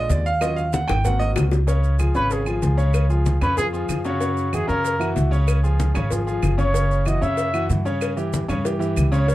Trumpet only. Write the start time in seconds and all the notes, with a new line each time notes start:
2.16 B4
2.32 G#4
3.42 B4
3.58 G#4
4.05 F#4
4.54 G#4
4.68 A#4
6.60 C#5
7.08 D#5
7.23 E5
9.13 C#5